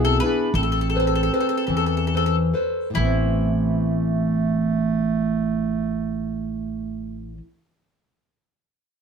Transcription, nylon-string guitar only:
0.00 0.20 B2 medium
0.00 0.21 B3 soft
0.00 0.22 E4 soft
0.00 0.23 G#4 soft
0.22 0.49 B3 medium
0.22 0.49 E4 soft
0.22 0.50 G#4 soft
0.57 0.95 A3 medium
0.95 1.32 A4 soft
0.95 1.32 B4 soft
0.95 1.32 C5 medium
1.33 1.98 A4 soft
1.33 1.98 B4 soft
1.33 1.98 C5 medium
1.70 2.52 E3 medium
2.14 2.53 A4 soft
2.14 2.53 B4 soft
2.14 2.53 C5 soft
2.54 2.88 A4 soft
2.54 2.88 B4 soft
2.54 2.88 C5 soft
2.90 7.32 A2 medium
2.90 7.36 E3 soft
2.97 7.39 A3 soft
2.97 7.42 B3 soft
3.05 7.47 C4 soft

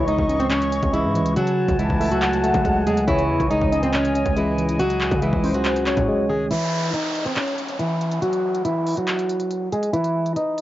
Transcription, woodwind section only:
0.00 1.35 E3 medium
0.00 1.35 D#5 medium
0.00 1.35 C#6 loud
1.37 3.06 F#5 medium
1.37 3.06 G#5 medium
1.37 3.06 A5 loud
3.08 4.62 E3 medium
3.08 6.47 D#5 medium
3.08 6.47 G#5 loud
4.79 6.49 G#4 medium

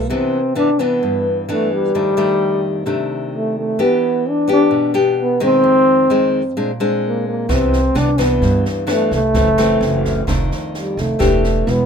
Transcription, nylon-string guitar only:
0.10 1.00 C3 soft
0.10 0.39 E3 medium
0.10 0.39 B3 soft
0.10 0.40 D4 medium
0.55 0.69 E3 medium
0.55 0.69 B3 medium
0.55 0.69 D4 medium
0.79 1.44 E3 medium
0.79 1.45 B3 soft
0.79 1.45 D4 medium
1.03 1.92 G2 soft
1.49 1.93 E3 medium
1.49 1.93 B3 medium
1.49 1.93 D4 medium
1.95 2.85 F2 medium
1.95 2.14 D#3 soft
1.95 2.14 A3 soft
1.95 2.14 D4 medium
2.17 2.83 D#3 medium
2.17 2.83 A3 medium
2.17 2.83 D4 medium
2.86 3.76 C3 soft
2.86 3.75 D#3 soft
2.86 3.75 A3 soft
2.86 3.75 D4 medium
3.79 4.69 E3 medium
3.79 4.25 B3 soft
3.79 4.25 D4 medium
3.79 4.25 G4 medium
4.48 4.91 B3 medium
4.48 4.91 D4 medium
4.48 4.91 G4 medium
4.71 5.61 B2 soft
4.94 5.37 B3 medium
4.94 5.37 D4 medium
4.94 5.37 G4 medium
5.40 6.06 D#3 medium
5.40 6.07 G#3 medium
5.40 6.07 C4 medium
5.64 6.54 F2 soft
6.10 6.41 D#3 soft
6.10 6.42 G#3 medium
6.10 6.42 C4 medium
6.57 7.47 A#2 soft
6.57 6.70 G#3 soft
6.57 6.70 C4 soft
6.57 6.71 D4 medium
6.80 7.46 G#3 medium
6.80 7.46 C4 medium
6.80 7.46 D4 medium
7.49 8.39 C3 soft
7.49 7.79 E3 soft
7.49 7.79 B3 medium
7.49 7.79 D4 medium
7.95 8.09 E3 medium
7.95 8.09 B3 medium
7.95 8.09 D4 medium
8.18 8.84 E3 medium
8.18 8.84 B3 medium
8.18 8.85 D4 medium
8.42 9.32 G2 soft
8.87 9.19 E3 medium
8.87 9.19 B3 medium
8.87 9.19 D4 medium
9.35 10.25 F#2 medium
9.35 9.48 E3 medium
9.35 9.49 A3 medium
9.35 9.49 C4 medium
9.58 10.24 E3 medium
9.58 10.24 A3 medium
9.58 10.24 C4 medium
10.27 11.18 F2 medium
10.27 11.16 D#3 soft
10.27 11.16 A3 soft
10.27 11.17 D4 medium
11.19 11.86 E3 medium
11.19 11.65 A3 soft
11.19 11.66 D4 soft
11.19 11.66 G4 medium

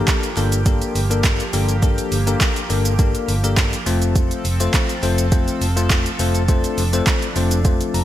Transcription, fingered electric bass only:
0.37 0.81 G1 loud
0.95 1.39 G1 loud
1.53 1.98 G1 medium
2.12 2.34 G1 medium
2.70 3.14 G1 loud
3.28 3.72 G1 loud
3.86 4.31 F1 medium
4.45 4.67 F1 medium
5.03 5.47 F1 loud
5.61 6.05 F1 loud
6.19 6.64 F1 medium
6.78 7.00 F1 medium
7.36 7.80 F1 loud
7.94 8.04 F1 loud

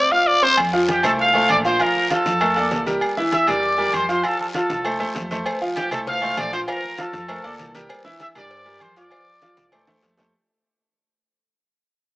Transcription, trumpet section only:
0.90 1.03 G4 loud
0.90 1.03 G5 medium
1.05 1.12 A4 medium
1.05 1.12 A5 medium
1.20 1.48 F5 loud
1.50 1.57 D5 loud
1.50 1.57 D6 medium
1.66 1.80 C5 loud
1.66 1.80 C6 medium
1.81 2.11 A#4 loud
1.81 2.11 A#5 medium
2.12 2.83 A4 loud
2.12 2.84 A5 medium
3.33 3.47 E5 loud
3.33 3.47 E6 medium
3.48 3.94 D5 loud
3.48 3.94 D6 medium
3.94 4.08 C5 loud
3.94 4.08 C6 medium
4.09 4.23 C5 medium
4.09 4.23 C6 medium
4.24 4.38 A4 loud
4.24 4.39 A5 medium
4.39 4.46 A4 medium
4.39 4.47 A5 medium
4.55 4.97 A4 medium
4.55 4.98 A5 medium
5.76 5.91 G4 medium
5.76 5.91 G5 medium
5.92 5.99 A4 medium
5.92 6.00 A5 medium
6.08 6.36 F5 loud
6.38 6.52 D5 loud
6.38 6.52 D6 medium
6.53 6.60 C5 loud
6.53 6.60 C6 medium
6.68 6.97 A#4 loud
6.68 6.97 A#5 medium
6.99 7.75 A4 medium
6.99 7.75 A5 medium
8.21 8.27 E5 loud
8.21 8.28 E6 medium
8.36 8.78 D5 loud
8.36 8.79 D6 medium
8.82 8.97 C5 loud
8.82 8.97 C6 medium
8.97 9.84 D5 loud
8.97 9.84 D6 medium

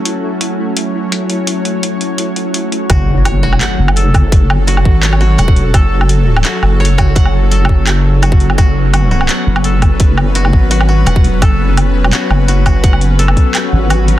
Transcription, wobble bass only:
2.90 3.39 F#1 loud
3.39 3.60 F1 loud
3.79 4.84 F#1 loud
4.85 5.37 G#1 loud
5.38 5.73 E1 loud
5.74 6.44 F#1 loud
6.63 7.68 F#1 medium
7.69 8.56 F#1 loud
8.58 9.28 F#1 loud
9.47 10.52 F#1 loud
10.53 11.05 G#1 loud
11.06 11.40 E1 loud
11.42 11.91 F#1 loud
11.91 12.12 F1 loud
12.30 13.36 F#1 loud
13.73 14.19 G#1 loud

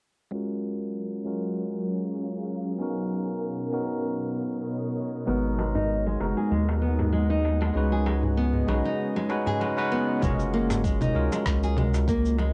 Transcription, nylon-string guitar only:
5.27 5.57 B3 medium
5.58 5.74 G#3 medium
5.75 6.04 D#4 medium
6.06 6.20 G#3 medium
6.37 6.50 G#4 medium
6.51 6.67 G#3 medium
6.82 7.11 B3 medium
7.12 7.29 G#3 medium
7.30 7.59 D#4 medium
7.61 7.74 G#3 medium
7.92 8.05 G#4 medium
8.06 8.22 G#3 medium
8.37 8.67 B3 medium
8.68 8.84 G#3 medium
8.85 9.14 D#4 medium
9.16 9.29 G#3 medium
9.47 9.60 G#4 medium
9.61 9.77 G#3 medium
9.92 10.21 B3 medium
10.22 10.39 G#3 medium
10.54 10.83 A#3 medium
10.84 11.00 G#3 medium
11.01 11.31 D#4 medium
11.32 11.46 G#3 medium
11.63 11.77 G#4 medium
11.77 11.93 G#3 medium
12.08 12.38 A#3 medium
12.39 12.53 G#3 medium

